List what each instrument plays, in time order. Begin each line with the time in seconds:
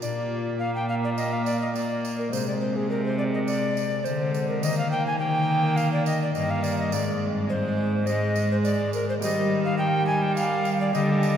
0.00 cello A#2, harp A#2 A#3 D4 F4, viola A#3, recorder D5, tambourine
0.59 viola A#3, recorder F5
0.75 recorder G5
0.89 recorder F5
1.04 recorder D5
1.17 recorder D#5, tambourine
1.33 recorder F5
1.45 recorder D5, tambourine
1.61 recorder D#5
1.75 viola A#3, recorder D5, tambourine
2.05 tambourine
2.18 recorder A#4
2.29 harp C3 G#3 C4 G#4, recorder C5
2.33 cello C3, viola G#3, tambourine
2.48 recorder D5
2.61 recorder C5
2.76 recorder G#4
2.90 recorder A#4
3.05 recorder C5
3.18 recorder D5
3.34 recorder D#5
3.47 recorder D5, tambourine
3.77 tambourine
4.04 cello D3, harp D3, viola G#3, recorder C5, tambourine
4.34 tambourine
4.49 recorder A#4
4.59 cello D#3, harp D#3 A#3 D#4 G4, viola A#3, recorder D#5
4.63 tambourine
4.78 recorder F5
4.91 recorder G5
5.07 recorder G#5
5.17 harp A#3 G4, viola A#3, recorder G5
5.76 recorder F5, tambourine
5.92 recorder D5
6.06 recorder D#5, tambourine
6.22 recorder D5
6.35 cello G2, harp G2, viola A#3, recorder D#5, tambourine
6.50 recorder F5
6.63 recorder D5, tambourine
6.79 recorder D#5
6.89 harp G#2 G#3 C4 G#4, cello G#2, tambourine
6.93 viola G#3, recorder D5
7.46 harp G#3 G#4 D#5, recorder C5
7.51 viola G#3
8.06 viola G#3, recorder D#5, tambourine
8.36 tambourine
8.51 recorder C5
8.64 recorder D5, tambourine
8.93 recorder A#4, tambourine
9.09 recorder C5
9.18 harp A#3 G4, tambourine
9.22 cello D#3, harp G3, viola G3, recorder D#5
9.65 recorder F5
9.78 viola G3, recorder G5
10.07 recorder G#5
10.22 recorder G5
10.36 recorder F5, tambourine
10.65 tambourine
10.80 recorder D5
10.91 harp D3 A#3 G4, cello D3, viola G3, recorder D#5, tambourine
11.23 tambourine